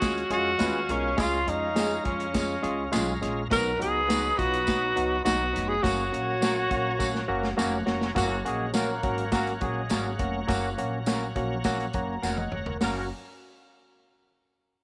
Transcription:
Already playing: upright bass D#2, tenor saxophone F#4, tonewheel organ C#5 F5 G#5
0.01 tine electric piano G#3 C#4 F4 G#4, horn section G#3 C#5 F5, kick, snare, closed hi-hat, tambourine
0.17 closed hi-hat
0.30 upright bass F2, tine electric piano G#3 C#4 F4 G#4, tenor saxophone F#4, closed hi-hat
0.59 upright bass D#2, tine electric piano G#3 C#4 F4 B4, clean electric guitar G#3 C#4 F4 G#4, snare, closed hi-hat, tambourine
0.89 upright bass B1, tine electric piano G#3 C#4 F4 A#4, tenor saxophone C#4, snare, closed hi-hat
1.17 upright bass C#2, tine electric piano G#3 C#4 F4 G#4, tonewheel organ A#5, kick, snare, closed hi-hat, tambourine
1.21 tenor saxophone F4
1.46 upright bass F2, tine electric piano G#3 C#4 F4 G#4, tenor saxophone D#4, closed hi-hat
1.75 tine electric piano G#3 C#4 F4 G#4, clean electric guitar G#3 C#4 F4 G#4, snare, closed hi-hat, tambourine
2.04 upright bass F2, tine electric piano G#3 C#4 F4 G#4, tenor saxophone C#4, kick, closed hi-hat
2.20 closed hi-hat
2.34 tine electric piano G#3 C#4 F4 G#4, kick, snare, closed hi-hat, tambourine
2.62 upright bass C#2, tine electric piano G#3 C#4 F4 G#4, closed hi-hat
2.91 upright bass B1, tine electric piano G#3 C#4 F4 G#4 C#6, clean electric guitar G#3 C#4 F4 G#4, snare, closed hi-hat, tambourine
3.21 upright bass A#1, tine electric piano G#3 C#4 F4 G#4, snare, closed hi-hat
3.50 upright bass B1, tine electric piano F#3 B3 D#4 F#4, horn section F#3 D#4 B4, tenor saxophone A#4, tonewheel organ D#5 F#5 B5, kick, snare, closed hi-hat, tambourine
3.79 upright bass C#2, tine electric piano F#3 B3 D#4 F#4, tenor saxophone G#4, closed hi-hat
4.08 tine electric piano F#3 B3 D#4 F#4, clean electric guitar B3 D#4 F#4 B4, snare, closed hi-hat, tambourine
4.38 upright bass B1, tine electric piano F#3 B3 D#4 F4, tenor saxophone F#4, kick, closed hi-hat
4.53 closed hi-hat
4.67 tine electric piano F#3 B3 D#4 F#4, kick, snare, closed hi-hat, tambourine
4.96 upright bass C#2, tine electric piano F#3 B3 D#4 F#4, closed hi-hat
5.25 upright bass B1, tine electric piano F#3 B3 D#4 F#4, clean electric guitar B3 D#4 F#4 B4, tenor saxophone F#4, snare, closed hi-hat, tambourine
5.53 upright bass F1, tine electric piano F#3 B3 D#4 F#4, snare, closed hi-hat
5.68 tenor saxophone G#4
5.82 upright bass F#1, tine electric piano F#3 A#3 C#4 F#4, horn section A#3 F#4 C#5, tenor saxophone F#4, tonewheel organ C#5 A#5, kick, snare, closed hi-hat, tambourine
6.12 tine electric piano F#3 A#3 C#4 F#4, closed hi-hat
6.41 tine electric piano F#3 A#3 C#4 F#4, clean electric guitar A#3 C#4 F#4 A#4, snare, closed hi-hat, tambourine
6.70 upright bass A#1, tine electric piano F#3 A#3 C#4 F#4, kick, closed hi-hat
6.99 tine electric piano F#3 A#3 C#4 F#4, kick, snare, tambourine
7.15 snare
7.28 upright bass F#1, tine electric piano F#3 A#3 C#4 F#4
7.43 snare
7.57 upright bass F1, tine electric piano F#3 A#3 C#4 F#4, clean electric guitar A#3 C#4 F#4 A#4, snare, tambourine
7.86 upright bass F1, tine electric piano F#3 A#3 C#4 F#4, snare
8.01 snare
8.15 upright bass F#1, tine electric piano F#3 A#3 C#4 F#4, horn section F#3 F#4, tonewheel organ C#5 F#5 A#5, kick, snare, closed hi-hat, tambourine
8.44 tine electric piano F#3 A#3 C#4 F#4, horn section G#3 G#4, closed hi-hat
8.73 tine electric piano F#3 A#3 C#4 F#4, clean electric guitar A#3 C#4 F#4 A#4, horn section A#3 A#4, snare, closed hi-hat, tambourine
9.03 upright bass G#1, tine electric piano F#3 A#3 C#4 F#4, kick, closed hi-hat
9.18 closed hi-hat
9.32 tine electric piano F#3 A#3 C#4 F#4, horn section A#3 A#4, kick, snare, closed hi-hat, tambourine
9.47 closed hi-hat
9.61 upright bass A#1, tine electric piano F#3 A#3 C#4 F#4, horn section G#3 G#4, kick, closed hi-hat
9.89 upright bass G#1, tine electric piano F#3 A#3 C#4 F#4, clean electric guitar A#3 C#4 F#4 A#4, snare, closed hi-hat, tambourine
10.19 upright bass F1, tine electric piano F#3 A#3 C#4 F#4, kick, closed hi-hat
10.47 upright bass F#1, tine electric piano F#3 A#3 C#4 F#4, kick, snare, closed hi-hat, tambourine
10.77 upright bass A#1, tine electric piano F#3 A#3 C#4 F#4, closed hi-hat
11.06 tine electric piano F#3 A#3 C#4 F#4, clean electric guitar A#3 C#4 F#4 A#4, snare, closed hi-hat, tambourine
11.36 upright bass A#1, tine electric piano F#3 A#3 C#4 F#4, kick, closed hi-hat
11.64 tine electric piano F#3 A#3 C#4 F#4, kick, snare, closed hi-hat, tambourine
11.80 closed hi-hat
11.93 upright bass F#1, tine electric piano F#3 A#3 C#4 F#4 A#5, kick, closed hi-hat
12.22 upright bass F1, clean electric guitar A#3 C#4 F#4 A#4, tine electric piano A#4 F#5, snare, tambourine
12.37 tine electric piano D#5, high tom
12.52 upright bass F1, tine electric piano C#5, mid tom
12.66 tine electric piano A#4, floor tom
12.81 upright bass F#1, tine electric piano F#3 A#3 C#4 F#4, horn section F#3 C#4 A#4, clean electric guitar A#3 C#4 F#4 A#4, tonewheel organ F#4 A#4 C#5, snare, open hi-hat, tambourine

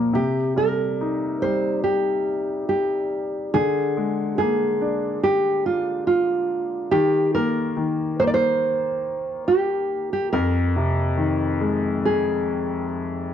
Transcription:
Already playing: grand piano A#2 F3 A#3, nylon-string guitar F4
0.13 grand piano C3, nylon-string guitar G4
0.56 grand piano G3, nylon-string guitar A#4
1.01 grand piano D#4
1.42 grand piano G3, nylon-string guitar C5
1.84 nylon-string guitar G4
2.69 nylon-string guitar G4
3.54 grand piano D3, nylon-string guitar G#4
3.97 grand piano G#3
4.38 grand piano A#3, nylon-string guitar G#4
4.81 grand piano D4
5.23 nylon-string guitar G4
5.66 nylon-string guitar F4
6.07 nylon-string guitar F4
6.91 grand piano D#3, nylon-string guitar G4
7.35 grand piano A#3, nylon-string guitar A#4
7.77 grand piano D#3
8.20 grand piano A#3, nylon-string guitar C5
8.27 nylon-string guitar D5
8.34 nylon-string guitar C5
9.48 nylon-string guitar G4
10.13 nylon-string guitar G4
10.33 grand piano F2, nylon-string guitar A#4
10.76 grand piano C3
11.17 grand piano D#3
11.61 grand piano G#3
12.05 nylon-string guitar G#4

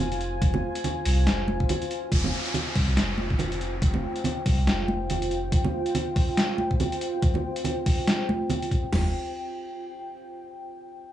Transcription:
Already playing: sub bass F1, ambient pad F4 C5 G#5
0.12 closed hi-hat
0.21 closed hi-hat
0.42 sub bass F1, kick, closed hi-hat
0.54 high conga, low conga
0.75 closed hi-hat
0.84 closed hi-hat, low conga
1.05 sub bass C2, open hi-hat
1.27 sub bass F1, snare, closed hi-hat
1.48 high conga
1.60 kick
1.69 closed hi-hat, low conga
1.82 closed hi-hat
1.91 closed hi-hat
2.12 sub bass F1, ambient pad F4 C5 G5, kick, closed hi-hat, downlifter
2.24 high conga, low conga
2.46 closed hi-hat
2.54 closed hi-hat, low conga
2.76 sub bass C2, kick, open hi-hat
2.97 sub bass F1, snare, closed hi-hat
3.18 high conga
3.30 kick
3.39 closed hi-hat, low conga
3.52 closed hi-hat
3.61 closed hi-hat
3.82 sub bass F1, kick, closed hi-hat
3.94 high conga, low conga
4.16 closed hi-hat
4.24 closed hi-hat, low conga
4.46 sub bass C2, kick, open hi-hat
4.67 sub bass F1, snare, closed hi-hat
4.88 high conga
5.10 closed hi-hat, low conga
5.22 closed hi-hat
5.31 closed hi-hat
5.52 kick, closed hi-hat
5.64 high conga, low conga
5.86 closed hi-hat
5.95 closed hi-hat, low conga
6.16 kick, open hi-hat
6.37 snare, closed hi-hat
6.58 high conga
6.71 kick
6.80 closed hi-hat, low conga
6.92 closed hi-hat
7.01 closed hi-hat
7.22 kick, closed hi-hat
7.34 high conga, low conga
7.56 closed hi-hat
7.64 closed hi-hat, low conga
7.86 kick, open hi-hat
8.07 snare, closed hi-hat
8.29 high conga
8.50 closed hi-hat, low conga
8.62 closed hi-hat
8.71 kick, closed hi-hat
8.93 sub bass F1, snare, floor tom, crash

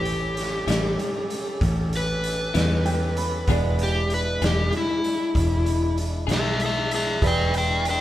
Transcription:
Already playing: fingered electric bass A1, tonewheel organ C#4 G4 A4, upright piano E4 G4 B4 C#5, electric slide guitar G4
0.05 closed hi-hat
0.37 snare, closed hi-hat
0.67 fingered electric bass A1, clean electric guitar A2 G3 C#4 E4, snare, closed hi-hat
0.99 closed hi-hat
1.30 closed hi-hat
1.61 fingered electric bass A1, kick, closed hi-hat
1.93 closed hi-hat
1.97 electric slide guitar B4
2.24 closed hi-hat
2.54 fingered electric bass E2, clean electric guitar A2 G3 C#4 E4, snare, closed hi-hat
2.86 upright piano G5, closed hi-hat
3.17 upright piano B5, closed hi-hat
3.47 fingered electric bass E1, clean electric guitar E3 B3 D4 G#4, tonewheel organ G#3 D4 E4, upright piano G#3 B4 D5 F#5, kick, closed hi-hat
3.79 closed hi-hat
3.83 electric slide guitar G4
4.10 closed hi-hat
4.14 electric slide guitar B4
4.42 fingered electric bass E1, clean electric guitar E3 B3 D4 G#4, snare, closed hi-hat
4.46 electric slide guitar G4
4.72 closed hi-hat
4.77 electric slide guitar E4
5.04 closed hi-hat
5.35 fingered electric bass E1, kick, closed hi-hat
5.66 closed hi-hat
5.98 closed hi-hat
6.27 fingered electric bass B1, clean electric guitar E3 B3 D4 G#4, closed hi-hat
6.31 electric slide guitar G#4 E5, snare
6.60 closed hi-hat
6.65 electric slide guitar G#4 E5
6.91 electric slide guitar G#4, closed hi-hat
6.95 electric slide guitar E5
7.20 fingered electric bass E1, tonewheel organ G#3 D4 E4, upright piano E4 G#4 B4, kick, closed hi-hat
7.24 electric slide guitar B4 G5, upright piano D5
7.54 electric slide guitar B4, closed hi-hat
7.58 electric slide guitar G5
7.85 closed hi-hat
7.89 electric slide guitar B4 G5

